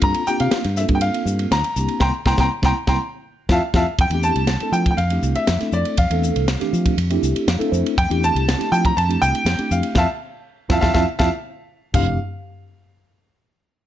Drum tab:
CC |----------------|----------------|----------------|----------------|
RD |xx-xxx-xxx-xxx-x|----------------|xx-xxx-xxx-xxx-x|xx-xxx-xxx-xxx-x|
HH |--p---p---p---p-|----------------|--p---p---p---p-|--p---p---p---p-|
SD |----ooo-----o---|o-oo-o-o----o-o-|----o-------oo--|----oo------o---|
FT |----------------|----------------|----------------|----------------|
BD |o------o--------|o-oo-o-o----o-o-|o------o--------|o------o--------|

CC |----------------|----------------|x---------------|
RD |xx-xxx-xxx-xxx-x|----------------|----------------|
HH |--p---p---p---p-|----------------|----------------|
SD |----oo------o---|o-----ooo-o-----|----------------|
FT |----------------|----------------|o---------------|
BD |o------o--------|o-----ooo-o-----|o---------------|